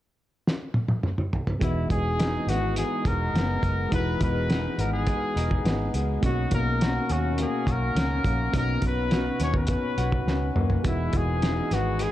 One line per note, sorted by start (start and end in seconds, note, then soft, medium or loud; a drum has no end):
0.47 snare medium
0.74 high tom medium
0.88 high tom medium
1.03 mid tom medium
1.18 mid tom medium
1.33 floor tom medium
1.47 floor tom loud
1.59 1.85 E1 medium
1.59 3.90 E3 medium
1.59 3.87 G#3 soft
1.59 3.88 B3 medium
1.59 3.89 D#4 medium
1.59 1.89 E4 medium
1.59 kick loud
1.59 closed hi-hat medium
1.64 3.90 F#4 medium
1.90 2.36 E1 medium
1.90 2.76 G#3 medium
1.90 2.51 G#4 medium
1.90 kick medium
1.90 closed hi-hat medium
2.20 3.06 D#4 medium
2.20 snare medium
2.20 closed hi-hat medium
2.47 2.82 G#1 medium
2.47 3.35 B3 medium
2.47 2.77 F#4 medium
2.47 snare soft
2.47 closed hi-hat medium
2.76 3.62 G#3 medium
2.76 3.09 G#4 medium
2.76 closed hi-hat medium
3.05 3.28 E1 medium
3.05 4.49 D#4 medium
3.05 3.93 A#4 medium
3.05 kick medium
3.05 closed hi-hat medium
3.34 3.57 F#1 medium
3.34 4.78 B3 medium
3.34 snare medium
3.34 closed hi-hat medium
3.63 3.86 F#1 medium
3.63 4.20 G#3 medium
3.63 kick medium
3.63 closed hi-hat medium
3.89 4.15 E1 medium
3.89 6.23 E3 medium
3.89 6.17 G#3 medium
3.89 6.18 B3 soft
3.89 6.19 D#4 medium
3.89 kick loud
3.89 closed hi-hat medium
3.94 6.20 F#4 medium
3.94 4.20 B4 loud
4.20 4.67 E1 medium
4.20 5.05 G#3 medium
4.20 4.82 B4 medium
4.20 kick medium
4.20 closed hi-hat medium
4.50 5.36 D#4 medium
4.50 snare loud
4.50 closed hi-hat medium
4.78 5.13 G#1 medium
4.78 5.64 B3 medium
4.78 4.93 A#4 medium
4.78 closed hi-hat medium
4.93 5.90 G#4 medium
5.07 5.94 G#3 medium
5.07 kick medium
5.07 closed hi-hat medium
5.36 5.59 E1 loud
5.36 6.82 D#4 medium
5.36 closed hi-hat medium
5.51 kick medium
5.65 5.88 G#1 medium
5.65 6.57 B3 medium
5.65 snare medium
5.65 closed hi-hat medium
5.94 6.17 C#2 medium
5.94 6.29 G#3 medium
5.94 closed hi-hat medium
6.21 6.46 B1 medium
6.21 8.53 B2 medium
6.21 8.49 A#3 medium
6.21 8.50 C#4 soft
6.21 8.51 D#4 soft
6.21 6.50 F#4 medium
6.21 kick loud
6.21 closed hi-hat medium
6.26 8.52 F#4 medium
6.51 6.98 B1 medium
6.51 7.38 A#3 medium
6.51 7.13 A#4 medium
6.51 kick medium
6.51 closed hi-hat medium
6.81 7.67 F#4 medium
6.81 snare medium
6.81 closed hi-hat medium
7.09 7.44 D#2 medium
7.09 7.95 C#4 medium
7.09 7.39 F#4 medium
7.09 closed hi-hat medium
7.38 8.24 A#3 medium
7.38 closed hi-hat medium
7.42 7.72 G#4 medium
7.66 7.90 B1 medium
7.66 9.11 F#4 medium
7.66 kick medium
7.66 closed hi-hat medium
7.71 8.56 A#4 medium
7.95 8.19 C#2 medium
7.95 9.40 C#4 medium
7.95 snare medium
7.95 closed hi-hat medium
8.24 8.48 A#1 medium
8.24 8.83 A#3 medium
8.24 kick medium
8.24 closed hi-hat medium
8.52 8.76 B1 medium
8.52 10.85 B2 medium
8.52 10.80 B3 medium
8.52 10.80 C#4 medium
8.52 10.81 D#4 medium
8.52 kick loud
8.52 closed hi-hat loud
8.57 10.82 F#4 medium
8.57 8.82 A#4 loud
8.82 9.29 B1 medium
8.82 kick medium
8.82 closed hi-hat medium
8.87 9.38 B4 medium
9.11 9.97 F#4 medium
9.11 snare medium
9.11 closed hi-hat medium
9.40 9.75 D#2 medium
9.40 10.27 C#4 medium
9.40 9.55 C#5 medium
9.40 snare soft
9.40 closed hi-hat medium
9.54 10.53 B4 medium
9.54 kick medium
9.67 kick medium
9.67 closed hi-hat medium
9.97 10.21 B1 medium
9.97 10.90 F#4 medium
9.97 closed hi-hat medium
10.12 kick medium
10.26 10.49 C#2 medium
10.26 10.91 C#4 medium
10.26 snare soft
10.55 10.79 F#2 medium
10.55 10.91 A#3 soft
10.55 mid tom medium
10.70 floor tom medium
10.83 11.08 E1 medium
10.83 12.12 E3 medium
10.83 12.12 G#3 medium
10.83 12.12 B3 soft
10.83 12.12 D#4 soft
10.83 11.18 E4 medium
10.83 kick loud
10.83 closed hi-hat medium
10.88 12.12 F#4 medium
11.13 11.60 E1 medium
11.13 12.01 G#3 medium
11.13 11.75 G#4 medium
11.13 kick medium
11.13 closed hi-hat medium
11.42 12.12 D#4 medium
11.42 snare medium
11.42 closed hi-hat medium
11.71 12.06 G#1 medium
11.71 12.12 B3 medium
11.71 12.03 F#4 medium
11.71 snare soft
11.71 closed hi-hat medium
11.99 12.12 G#3 medium
11.99 12.12 G#4 medium
11.99 closed hi-hat medium